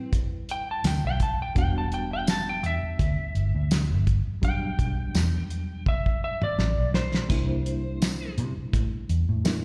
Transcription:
Already playing: G3 C4 E4 B4
0.13 kick, closed hi-hat
0.49 G5, closed hi-hat
0.71 A5
0.84 D2 G5, snare, closed hi-hat, tambourine
1.04 B1 G5
1.20 A5, kick, closed hi-hat
1.42 G5
1.55 E1 G3 B3 D4 F#4 G5, kick, closed hi-hat
1.78 A5
1.92 G5, closed hi-hat
2.13 G5
2.27 A5, snare, closed hi-hat, tambourine
2.49 G5
2.63 E2 E5, closed hi-hat
2.83 muted fingered electric bass stroke
2.99 D2, kick, closed hi-hat
3.35 G1, closed hi-hat
3.55 D2
3.71 snare, closed hi-hat, tambourine
3.90 G1
4.07 kick, closed hi-hat
4.42 B2 F#3 G3 D4 G5, kick, closed hi-hat
4.79 B1, kick, closed hi-hat
5.14 E2, snare, closed hi-hat, tambourine
5.50 closed hi-hat
5.86 E5, kick, high tom
6.06 kick
6.24 E5
6.42 D5, mid tom
6.58 A1, snare
6.78 B1
6.94 C5, snare
7.14 snare
7.29 C2 G3 A#3 D4 E4, kick, closed hi-hat, splash
7.66 closed hi-hat
8.02 snare, closed hi-hat, tambourine
8.38 C3, closed hi-hat
8.57 muted fingered electric bass stroke
8.73 A2, kick, closed hi-hat
9.09 E2, closed hi-hat
9.29 A2
9.44 G3 A#3 D4 E4, snare, closed hi-hat, tambourine

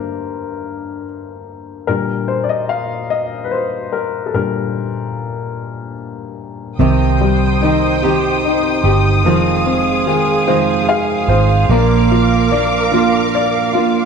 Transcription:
Already playing: G2 D3 A#3 A#4 C5 D5
1.87 A#2 D3 G3 A#4
2.28 C5
2.44 D5
2.49 D#5
2.69 F5
3.10 D#5
3.44 B4
3.51 C5
3.92 A#4
4.26 A4
4.34 A#2 D3 G3 A#4
6.78 C2 C3 D#3 C4 D#4 G4 C5 G5 D#6
7.21 G3
7.61 D#3 C4 D#4 G4
8.02 C3 D#3 C4 D#4 G4
8.45 D#4
8.83 G1 C4 D#4 G4
9.24 F1 F2 C3 D#3 F3 G#3 C4 F4 G#4 F5
9.66 C4
10.06 D#3 G#3 C4 F4 G#4
10.47 F2 C3 D#3 G#3 C4 F4 C5
10.89 G#4 F5
11.28 G#1 D#3 G#3 C4 F4 C5
11.69 A#1 A#2 F3 A#3 D4 F4 A#4 D6
12.11 F4
12.50 F3 A#3 D4 F4 D5
12.91 A#2 F3 A#3 D4 F4
13.35 D5
13.73 G1 A#3 D4 F4

